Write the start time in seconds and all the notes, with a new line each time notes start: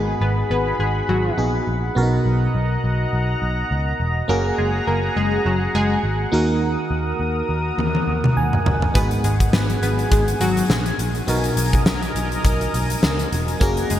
Already playing: G#1 G#2 B3 D#4 F#4 G#4 F#5 B5
0.21 G#1 B3 B4
0.50 G#1 B3 B4
0.79 G#1 G#3 G#4
1.09 G#1 F#3 F#4
1.37 A#1 B3 D#4 F#4 G#4
1.67 A#1
1.95 B1 B2 B3 C#4 F#4 A#4 D#5 F#5 A#5
2.02 D#4
2.26 B1
2.55 B1
2.84 B1
3.13 B1
3.42 B1
3.71 C#2
4.00 E1
4.28 F#1 A#3 C#4 F#4 G#4 A#4 F#5 A#5
4.58 F#1 G#3 G#4
4.87 F#1 A#3 A#4
5.16 F#1 G#3 G#4
5.46 F#1 F#3 F#4
5.75 F#1 G#3 G#4
6.03 G#1
6.32 D#2 D#3 A#3 D#4 F#4 A#4 D#6
6.91 D#2
7.20 D#2
7.49 D#2
7.78 D#2, high tom
7.95 high tom
8.08 D#2
8.24 mid tom
8.37 D#2 G#5
8.53 mid tom
8.66 F#1, floor tom
8.82 floor tom
8.94 G#1 G#2 B3 D#4 F#4 G#4 B4 G#5, kick, closed hi-hat
9.11 closed hi-hat
9.24 G#1 G#3 G#4, closed hi-hat
9.40 kick, closed hi-hat
9.53 G#1 B3 B4, snare
9.70 closed hi-hat
9.82 G#1 B3 B4, closed hi-hat
9.99 closed hi-hat
10.12 G#1 G#3 G#4, kick, closed hi-hat
10.28 closed hi-hat
10.40 G#1 F#3 F#4, closed hi-hat
10.57 closed hi-hat
10.70 A#1, snare
10.86 closed hi-hat
10.99 A#1, closed hi-hat
11.15 closed hi-hat
11.27 B1 B2 B3 D#4 F#4 A#4 D#5, closed hi-hat
11.44 closed hi-hat
11.57 B1, closed hi-hat
11.73 kick, closed hi-hat
11.86 B1, snare
12.03 closed hi-hat
12.15 B1, closed hi-hat
12.32 closed hi-hat
12.44 B1, kick, closed hi-hat
12.61 closed hi-hat
12.74 B1, closed hi-hat
12.90 closed hi-hat
13.03 C#2, snare
13.19 closed hi-hat
13.32 E1, closed hi-hat
13.48 closed hi-hat
13.60 F#1 A#3 C#4 F#4 G#4 A#4 F#5 A#5, kick, closed hi-hat
13.77 closed hi-hat
13.90 F#1 G#3 G#4, closed hi-hat